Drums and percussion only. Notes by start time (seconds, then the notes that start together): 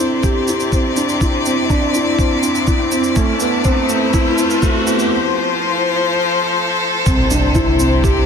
0.23 kick, shaker
0.48 shaker
0.60 shaker
0.72 kick, shaker
0.97 shaker
1.09 shaker
1.21 kick, shaker
1.46 shaker
1.70 kick, shaker
1.95 shaker
2.19 kick, shaker
2.43 shaker
2.55 shaker
2.67 kick, shaker
2.92 shaker
3.04 shaker
3.16 kick, shaker
3.40 shaker
3.65 kick, shaker
3.89 shaker
4.14 kick, shaker
4.38 shaker
4.50 shaker
4.62 kick, shaker
4.87 shaker
4.99 shaker
7.06 kick, shaker
7.31 shaker
7.55 kick, shaker
7.80 shaker
8.04 kick, shaker